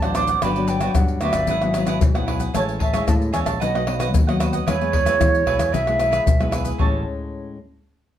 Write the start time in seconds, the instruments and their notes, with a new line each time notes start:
Already playing: picked electric bass A1, nylon-string guitar A2, flute A5
0.02 nylon-string guitar F#3 C4 D4, cavaquinho C5 D5 F#5, pandeiro, tamborim, maracas
0.15 cavaquinho D4 C5 D5 F#5, flute D6, pandeiro, tamborim, maracas
0.27 cavaquinho C5 D5 F#5, pandeiro, maracas
0.42 picked electric bass G1, nylon-string guitar G2 F#3 B3 D4, cavaquinho F#4 G4 B4 D5, flute B5, pandeiro, tamborim, maracas, surdo
0.56 nylon-string guitar F#3 B3 D4, pandeiro, maracas
0.68 cavaquinho F#4 G4 B4 D5, flute G5, pandeiro, maracas
0.81 nylon-string guitar F#3 B3 D4, cavaquinho F#4 G4 B4 D5, pandeiro, tamborim, maracas
0.95 picked electric bass G2, nylon-string guitar D3, flute F#5, pandeiro, tamborim, maracas, surdo
1.08 pandeiro, maracas
1.21 picked electric bass D2, nylon-string guitar F#3 B3 D4, cavaquinho F#4 G4 B4 D5, flute E5, pandeiro, tamborim, maracas
1.33 picked electric bass G1, cavaquinho B4 D5, pandeiro, tamborim, maracas
1.37 cavaquinho G4
1.47 picked electric bass G#1, nylon-string guitar G#2 F#3 B3 E4, cavaquinho E4 G#4 B4 F#5, pandeiro, maracas, surdo
1.62 nylon-string guitar F#3 B3 E4, cavaquinho G#4 B4 F#5, pandeiro, tamborim, maracas
1.74 nylon-string guitar F#3 B3 E4, cavaquinho E4 G#4 B4 F#5, pandeiro, tamborim, maracas
1.87 cavaquinho E4 G#4 B4 F#5, pandeiro, tamborim, maracas
2.01 picked electric bass B1, nylon-string guitar G#2, pandeiro, maracas, surdo
2.15 nylon-string guitar F#3 B3 E4, cavaquinho G#4 B4 F#5, pandeiro, tamborim, maracas
2.27 cavaquinho E4 G#4 B4 F#5, pandeiro, tamborim
2.40 cavaquinho G#4 B4 F#5, pandeiro, maracas
2.54 picked electric bass A1, nylon-string guitar A2 G#3 C#4 E4, cavaquinho G#4 C#5 E5 A5, flute C#5, pandeiro, tamborim, maracas, surdo
2.69 pandeiro, maracas
2.79 cavaquinho G#4 C#5 E5 A5, flute E5, pandeiro, surdo
2.93 nylon-string guitar G#3 C#4 E4, cavaquinho G#4 C#5 E5 A5, pandeiro, tamborim, maracas
3.08 picked electric bass A2, nylon-string guitar E3, flute A5, pandeiro, tamborim, maracas, surdo
3.22 pandeiro, maracas
3.33 picked electric bass E2, nylon-string guitar G#3 C#4 E4, cavaquinho G#4 C#5 E5 A5, flute G#5, pandeiro, tamborim, maracas
3.46 picked electric bass A#1, cavaquinho C#5 E5 A5, pandeiro, tamborim, maracas
3.60 picked electric bass B1, nylon-string guitar B2 F#3 B3 D#4, cavaquinho F#4 B4 D#5 F#5, flute D#5, pandeiro, maracas, surdo
3.75 nylon-string guitar F#3 B3 D#4, cavaquinho B4 D#5 F#5, pandeiro, tamborim, maracas
3.87 nylon-string guitar F#3 B3 D#4, cavaquinho F#4 B4 D#5 F#5, pandeiro, tamborim
3.99 cavaquinho F#4 B4 D#5 F#5, pandeiro, tamborim, maracas
4.14 picked electric bass D#2, nylon-string guitar F#3, pandeiro, maracas, surdo
4.27 nylon-string guitar F#3 B3 D#4, cavaquinho B4 D#5 F#5, pandeiro, tamborim, maracas
4.40 cavaquinho F#4 B4 D#5 F#5, pandeiro, tamborim, maracas
4.53 cavaquinho B4 D#5 F#5, pandeiro, maracas
4.66 picked electric bass E2, nylon-string guitar E3 G#3 B3 E4, cavaquinho E4 G#4 B4 E5, flute C#5, pandeiro, tamborim, maracas, surdo
4.81 nylon-string guitar G#3 B3 E4, pandeiro, maracas
4.92 cavaquinho E4 G#4 B4 E5, pandeiro, surdo
5.05 nylon-string guitar G#3 B3 E4, cavaquinho E4 G#4 B4 E5, pandeiro, tamborim, maracas
5.20 nylon-string guitar B2, picked electric bass E3, pandeiro, tamborim, maracas, surdo
5.34 pandeiro, maracas
5.46 picked electric bass B1, nylon-string guitar G#3 B3 E4, cavaquinho E4 G#4 B4 E5, pandeiro, tamborim
5.58 picked electric bass E2, cavaquinho G#4 B4 E5, pandeiro, tamborim, maracas
5.72 picked electric bass B1, nylon-string guitar E3, cavaquinho E4 G#4 B4 E5, flute E5, pandeiro, maracas, surdo
5.86 nylon-string guitar G#3 B3 E4, cavaquinho G#4 B4 E5, pandeiro, tamborim, maracas
5.99 nylon-string guitar G#3 B3 E4, cavaquinho E4 G#4 B4 E5, pandeiro, tamborim, maracas
6.11 cavaquinho E4 G#4 B4 E5, pandeiro, tamborim, maracas
6.26 picked electric bass B1, nylon-string guitar B2, pandeiro, maracas, surdo
6.39 nylon-string guitar G#3 B3 E4, cavaquinho G#4 B4 E5, pandeiro, tamborim, maracas
6.51 cavaquinho E4 G#4 B4 E5, pandeiro, tamborim, maracas
6.64 cavaquinho G#4 B4 E5, pandeiro, maracas
6.78 picked electric bass A1, nylon-string guitar A2 G#3 C#4 E4, cavaquinho G#4 C#5 E5 A5, flute A5, surdo